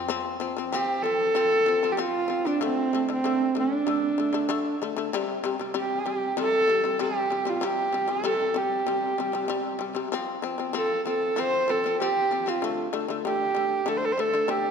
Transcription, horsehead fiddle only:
0.73 G4
1.03 A4
1.92 G4
2.00 F4
2.47 D4
2.64 C4
3.12 C4
3.59 D4
5.79 G4
6.40 A4
7.02 G4
7.50 F4
7.65 G4
8.11 A4
8.57 G4
10.76 A4
11.07 A4
11.39 C5
11.70 A4
12.00 G4
12.49 F4
13.26 G4
13.88 A4
13.97 C5
14.05 A4
14.12 C5
14.20 A4
14.50 G4

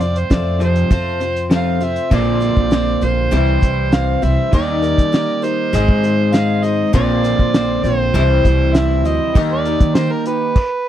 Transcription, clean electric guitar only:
0.00 F2 C3
0.30 F2 C3
0.59 F2 C3 F3
0.90 F2 C3
1.20 F2 C3
1.50 F2 C3 F3
1.81 F2 C3
2.10 A#2 D3 A#3 C4 F4
3.32 C3 E3 G3 C4 E4
4.52 D#3 G3 A#3 D#4 G4
5.73 G#2 D#3 G#3 C4 D#4 G#4
6.93 A#2 D3 A#3 C4 F4
8.14 C3 E3 G3 C4 E4
9.34 D#3 A#3 D#4 G4

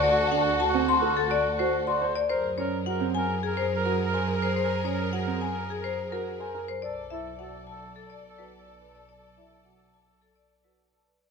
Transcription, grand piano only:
0.03 D5
0.31 D4
0.60 F#4
0.74 C4
1.02 A4
1.59 F#4
1.87 D5
2.01 C5
2.29 C5
2.58 C#4
2.86 F#4
3.00 C4
3.85 F#4
4.14 C5
4.28 A#4
4.56 C5
4.84 C#4
5.13 F#4
5.27 C4
6.12 F#4
6.40 C5
6.54 A#4
6.83 D5
7.11 E4
7.39 F#4
8.38 F#4
8.66 D5
8.81 B4
9.09 D5
9.37 E4
9.65 F#4
10.64 F#4
10.93 D5
11.07 B4

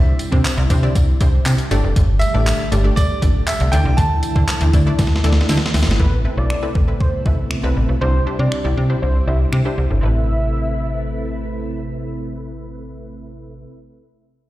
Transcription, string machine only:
Already playing: D3 G3 C4 E4
1.71 A3 G4
3.73 E3 E4
6.00 C3 A3 B3 E4
8.01 G3 D4 E4
10.03 C3 A3 E4 B4

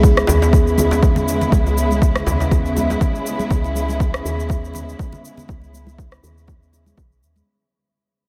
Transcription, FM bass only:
Already playing: C#2
0.28 D#2
1.03 E2
1.52 C#2
2.27 D#2
3.51 C#2
4.25 D#2
5.49 C#2
6.23 D#2
6.98 B1
7.23 D#2

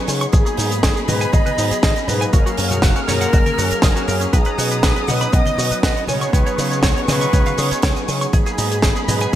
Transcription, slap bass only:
0.08 C#3
0.33 G#1
0.58 G#2
0.83 G#1
1.08 G#2
1.33 G#1
1.58 G#2
1.71 muted slap bass stroke
1.83 G#1
2.08 G#2
2.33 F#1
2.58 F#2
2.83 F#1
3.08 F#2
3.33 F#1
3.58 F#2
3.71 muted slap bass stroke
3.83 F#1
4.08 F#2
4.33 B1
4.58 B2
4.83 B1
5.08 B2
5.33 B1
5.58 B2
5.71 muted slap bass stroke
5.83 B1
6.08 C#3
6.33 C#2
6.58 C#3
6.83 C#2
7.08 C#3
7.33 C#2
7.58 C#3
7.71 muted slap bass stroke
7.83 C#2
8.08 C#3
8.33 G#1
8.58 G#2
8.83 G#1
9.08 G#2

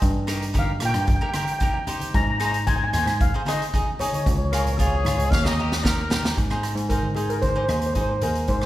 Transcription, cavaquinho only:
0.27 D#4 G4 A#4
0.54 D#4 G4 A#4
0.81 D#4 G4 A#4
1.21 D#4 G4 A#4
1.35 D#4 G4 A#4
1.61 D#4 G4 A#4
1.87 D#4 G4 C5
2.40 D#4 G#4 C5
2.68 D#4 G#4 C5
2.93 D#4 G#4 C5
3.34 D#4 G#4 C5
3.46 D#4 G#4 C5
3.74 D#4 G#4 D#5
4.00 D#4 G#4 D#5
4.53 F4 G#4 C#5
4.80 F4 G#4 C#5
5.06 F4 G#4 C#5
5.46 D#4 G4 A#4
5.59 D#4 G4 A#4
5.83 D#4 G4 A#4
6.10 D#4 G4 A#4
6.50 D#4 G#4 C5
6.90 D#4 G#4 C5
7.16 D#4 G#4 C5
7.56 D#4 G#4 C5
7.69 D#4 G#4 C5
7.95 D#4 G#4 C5
8.23 D#4 G#4 C5
8.62 D#4

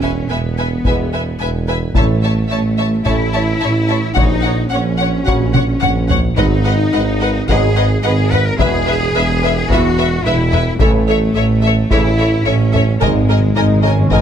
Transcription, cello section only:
Already playing: C#4
0.30 B3
1.96 A3
3.07 E4
4.16 D#4
4.71 C#4
6.37 D#4
7.49 G#4
8.05 G#4
8.32 B4
8.47 A#4
8.61 G#4
9.71 F#4
10.25 E4
10.80 A3
11.91 E4
12.46 C#4
13.01 G#3

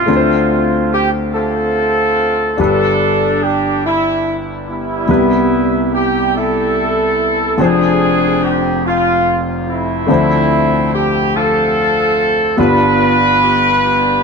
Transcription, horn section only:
Already playing: A3 C4 F4
0.93 G4
1.35 C4 F4 A4
2.61 D4 A4
3.43 G4
3.85 E4
4.68 G3 B3 E4
5.94 G4
6.35 E4 A4
7.61 C4 D4 G#4
8.43 G4
8.86 F4
9.68 A3 C4 E4
10.94 G4
11.35 C4 F4 A4
12.59 D4 F4 B4
13.43 G4
13.83 B3 D4 G4

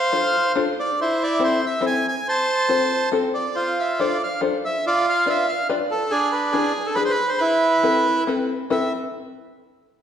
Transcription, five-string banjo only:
0.12 D4 F4 A4 C5
0.55 D4 F4 A4 C5
1.39 C4 E4 A4 C5
1.81 C4 E4 A4 C5
2.68 C4 F4 A4 C5
3.12 C4 F4 A4 C5
3.99 D4 F4 A4 C5
4.41 D4 F4 A4 C5
5.26 D4 F4 B4 D5
5.69 D4 F4 B4 D5
6.53 D4 E4 G#4 B4
6.96 D4 E4 G#4 B4
7.83 C4 E4 A4 B4
8.27 C4 E4 A4 B4
8.70 C4 E4 A4 B4

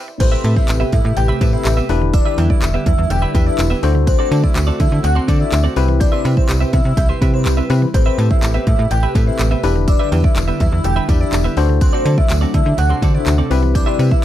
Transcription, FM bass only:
Already playing: C3
0.20 A1
0.44 A2
0.69 A1
0.93 A2
1.05 A2
1.17 A1
1.41 A2
1.65 A1
1.89 E1
2.38 E2
2.62 E1
2.86 E2
2.98 E2
3.10 E1
3.35 E2
3.59 E1
3.83 D2
4.31 D3
4.56 D2
4.80 D3
4.92 D3
5.04 D2
5.28 D3
5.52 D2
5.77 C2
6.25 C3
6.49 C2
6.73 C3
6.85 C3
6.97 C2
7.22 C3
7.46 C2
7.70 C3
7.94 A1
8.18 A2
8.43 A1
8.67 A2
8.79 A2
8.91 A1
9.15 A2
9.40 A1
9.64 E1
10.12 E2
10.36 E1
10.61 E2
10.72 E2
10.84 E1
11.09 E2
11.33 E1
11.57 D2
12.05 D3
12.30 D2
12.54 D3
12.66 D3
12.78 D2
13.02 D3
13.27 D2
13.51 C2
13.99 C3

